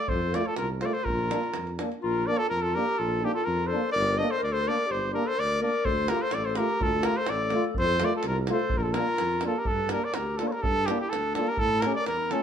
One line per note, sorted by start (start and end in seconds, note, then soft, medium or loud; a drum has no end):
0.00 0.10 D5 loud
0.06 0.34 A4 medium
0.06 0.36 C5 medium
0.06 davul low medium
0.10 0.37 F2 loud
0.32 0.45 A3 medium
0.32 0.43 F4 medium
0.32 0.45 A#4 medium
0.32 0.48 D5 medium
0.32 davul high medium
0.43 0.55 F4 medium
0.43 0.57 A4 medium
0.56 0.84 C2 medium
0.56 0.68 F4 medium
0.56 0.69 A#4 medium
0.56 davul high medium
0.81 0.93 A3 medium
0.81 0.91 F4 soft
0.81 0.89 A4 medium
0.81 0.87 C5 medium
0.81 davul high medium
0.85 0.94 A#4 medium
0.85 0.95 D5 medium
0.93 1.05 A4 medium
0.93 1.06 C5 medium
0.93 davul high soft
1.03 1.77 F4 medium
1.03 1.77 A#4 medium
1.03 davul low medium
1.07 1.34 A#1 loud
1.19 davul high soft
1.29 1.42 A#3 medium
1.29 1.39 D4 medium
1.29 davul high medium
1.43 davul high soft
1.54 1.83 F2 medium
1.54 davul high medium
1.67 davul high soft
1.79 1.91 A#3 medium
1.79 1.89 D4 medium
1.79 davul high medium
1.92 davul high soft
2.02 2.30 A#1 loud
2.02 2.29 F4 loud
2.02 2.28 A#4 medium
2.27 2.39 A#3 medium
2.27 2.37 D4 medium
2.27 2.41 A#4 medium
2.27 2.39 D5 loud
2.38 2.48 F4 medium
2.38 2.49 A4 loud
2.49 2.77 F2 medium
2.49 2.64 F4 medium
2.49 2.63 A#4 medium
2.62 2.76 F4 medium
2.62 2.76 A4 medium
2.74 2.86 A#3 medium
2.74 2.85 D4 medium
2.74 3.00 G4 medium
2.74 3.00 A#4 medium
2.98 3.25 A#1 medium
2.98 3.24 F4 medium
2.98 3.26 A4 medium
3.22 3.33 A#3 medium
3.22 3.33 D4 medium
3.22 3.33 D#4 medium
3.22 3.34 G4 medium
3.34 3.44 F4 medium
3.34 3.46 A4 medium
3.44 3.74 F2 loud
3.44 3.68 F4 medium
3.44 3.68 A#4 medium
3.67 3.91 A4 medium
3.67 3.91 C5 medium
3.71 3.83 A#3 medium
3.71 3.81 D4 medium
3.92 4.21 G1 loud
3.92 4.18 A#4 medium
3.92 4.20 D5 loud
4.17 4.28 D4 medium
4.17 4.29 C5 medium
4.17 4.32 D#5 loud
4.21 4.30 A#3 medium
4.27 4.37 A4 medium
4.27 4.42 C5 loud
4.37 4.52 A#4 medium
4.43 4.69 D2 medium
4.43 4.54 D5 medium
4.51 4.64 A4 medium
4.51 4.69 C5 loud
4.62 4.88 A#4 medium
4.67 4.77 A#3 medium
4.67 4.76 D4 medium
4.67 4.93 D5 loud
4.87 5.17 G1 loud
4.87 5.11 G4 medium
4.91 5.13 C5 medium
5.11 5.24 A#3 medium
5.11 5.23 D4 medium
5.11 5.26 G4 medium
5.11 5.29 A#4 medium
5.24 5.37 A4 medium
5.24 5.41 C5 loud
5.36 5.65 D2 medium
5.36 5.60 A#4 medium
5.36 5.62 D5 loud
5.61 5.71 A#3 medium
5.61 5.72 D4 medium
5.61 5.86 A#4 loud
5.61 5.86 D5 medium
5.85 6.12 D2 loud
5.85 6.10 A4 medium
5.85 6.10 C5 loud
5.85 davul low loud
6.08 6.20 A3 medium
6.08 6.19 F4 medium
6.08 6.23 G4 medium
6.08 6.23 A#4 medium
6.08 davul high medium
6.21 6.34 A4 medium
6.21 6.35 C5 loud
6.31 6.60 A1 medium
6.31 6.48 A4 medium
6.31 6.47 D5 medium
6.31 davul high medium
6.45 6.58 A4 medium
6.45 6.59 C5 medium
6.55 6.67 A3 medium
6.55 6.67 F4 medium
6.55 6.82 G4 medium
6.55 6.84 A#4 medium
6.55 davul high medium
6.70 davul high soft
6.80 7.07 D2 loud
6.80 7.08 F4 medium
6.80 7.07 A4 medium
6.80 davul low loud
7.03 7.15 A3 medium
7.03 7.14 F4 medium
7.03 7.21 G4 medium
7.03 7.18 A#4 medium
7.03 davul high medium
7.17 7.30 A4 medium
7.17 7.31 C5 medium
7.26 7.55 A1 medium
7.26 7.77 A4 loud
7.26 7.64 D5 loud
7.26 davul high medium
7.50 7.62 A3 medium
7.50 davul high medium
7.55 7.64 F4 medium
7.64 davul high soft
7.74 8.03 F2 loud
7.74 8.05 A4 medium
7.74 davul low medium
7.79 8.06 C5 loud
8.00 8.11 A3 medium
8.00 8.11 F4 medium
8.00 8.15 A#4 medium
8.00 davul high medium
8.05 8.15 D5 medium
8.16 8.26 F4 medium
8.16 8.26 A4 medium
8.23 8.51 C2 loud
8.23 davul high medium
8.27 8.39 F4 medium
8.27 8.38 A#4 medium
8.47 8.58 A3 medium
8.47 8.58 F4 medium
8.47 davul high medium
8.51 8.79 A4 medium
8.51 8.79 C5 medium
8.59 davul high soft
8.70 8.99 A#1 loud
8.70 davul low loud
8.78 8.81 F4 medium
8.78 8.91 F4 medium
8.78 8.84 A#4 medium
8.83 8.95 A4 medium
8.83 davul high soft
8.91 9.44 F4 loud
8.91 9.45 A#4 loud
8.91 davul high medium
8.95 9.07 A#3 medium
8.95 9.05 D4 medium
9.07 davul high soft
9.18 9.47 F2 medium
9.18 davul high medium
9.31 davul high soft
9.41 9.53 D4 soft
9.41 9.59 F4 medium
9.41 davul high medium
9.46 9.55 A#3 medium
9.46 9.60 A4 medium
9.57 9.71 G4 medium
9.57 9.68 A#4 medium
9.65 9.92 D4 medium
9.65 9.92 A4 medium
9.65 davul low loud
9.69 9.95 G2 medium
9.89 10.01 D4 medium
9.89 10.05 G4 medium
9.89 10.06 A#4 medium
9.89 davul high medium
9.93 10.03 A#3 medium
10.04 10.20 A#4 medium
10.04 10.16 D5 medium
10.14 10.43 D2 medium
10.14 10.39 A#4 medium
10.14 davul high medium
10.19 10.41 G4 medium
10.37 10.51 D4 medium
10.37 10.50 F4 medium
10.37 10.49 A4 medium
10.37 davul high medium
10.42 10.51 A#3 medium
10.47 10.57 A4 soft
10.47 10.53 C#5 soft
10.52 10.67 G4 medium
10.52 10.64 A#4 medium
10.52 davul high soft
10.62 10.90 G2 loud
10.62 10.91 D4 medium
10.62 10.88 A4 loud
10.62 davul low loud
10.86 10.99 A#3 medium
10.86 10.98 D4 medium
10.86 11.01 E4 medium
10.86 10.99 G4 medium
10.86 davul high medium
11.00 11.15 E4 medium
11.00 11.11 G4 medium
11.10 11.38 D2 medium
11.10 11.36 D4 medium
11.10 11.34 A4 medium
11.10 davul high medium
11.35 11.46 D4 medium
11.35 11.51 F4 medium
11.35 11.50 A4 medium
11.35 davul high medium
11.39 11.48 A#3 medium
11.47 11.60 G4 medium
11.47 11.61 A#4 medium
11.47 davul high soft
11.57 11.87 A2 loud
11.57 11.88 E4 medium
11.57 11.82 A4 loud
11.57 davul low medium
11.81 11.93 C#4 medium
11.81 11.94 A#4 medium
11.81 davul high medium
11.85 11.95 A3 medium
11.85 11.97 G4 medium
11.95 12.06 D5 loud
11.99 12.08 A#4 medium
12.06 12.34 E2 medium
12.06 12.33 A#4 medium
12.06 davul high medium
12.13 12.35 E4 medium
12.31 12.43 A3 medium
12.31 12.41 C#4 medium
12.31 12.43 F4 medium
12.31 12.43 A4 medium
12.31 davul high medium